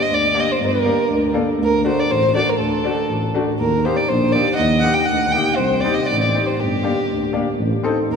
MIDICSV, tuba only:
0, 0, Header, 1, 2, 480
1, 0, Start_track
1, 0, Key_signature, -2, "minor"
1, 0, Tempo, 499168
1, 570, Time_signature, 2, 2, 24, 8
1, 7847, End_track
2, 0, Start_track
2, 0, Title_t, "Tuba"
2, 0, Program_c, 0, 58
2, 97, Note_on_c, 0, 38, 74
2, 383, Note_off_c, 0, 38, 0
2, 581, Note_on_c, 0, 31, 86
2, 866, Note_off_c, 0, 31, 0
2, 1056, Note_on_c, 0, 38, 77
2, 1342, Note_off_c, 0, 38, 0
2, 1533, Note_on_c, 0, 38, 91
2, 1821, Note_off_c, 0, 38, 0
2, 2029, Note_on_c, 0, 33, 77
2, 2312, Note_off_c, 0, 33, 0
2, 2499, Note_on_c, 0, 38, 84
2, 2785, Note_off_c, 0, 38, 0
2, 2972, Note_on_c, 0, 33, 75
2, 3260, Note_off_c, 0, 33, 0
2, 3458, Note_on_c, 0, 39, 84
2, 3744, Note_off_c, 0, 39, 0
2, 3935, Note_on_c, 0, 34, 84
2, 4223, Note_off_c, 0, 34, 0
2, 4408, Note_on_c, 0, 39, 95
2, 4698, Note_off_c, 0, 39, 0
2, 4889, Note_on_c, 0, 38, 78
2, 5179, Note_off_c, 0, 38, 0
2, 5366, Note_on_c, 0, 36, 83
2, 5657, Note_off_c, 0, 36, 0
2, 5868, Note_on_c, 0, 33, 81
2, 6152, Note_off_c, 0, 33, 0
2, 6352, Note_on_c, 0, 31, 77
2, 6634, Note_off_c, 0, 31, 0
2, 6824, Note_on_c, 0, 38, 71
2, 7109, Note_off_c, 0, 38, 0
2, 7300, Note_on_c, 0, 33, 103
2, 7442, Note_off_c, 0, 33, 0
2, 7777, Note_on_c, 0, 39, 73
2, 7847, Note_off_c, 0, 39, 0
2, 7847, End_track
0, 0, End_of_file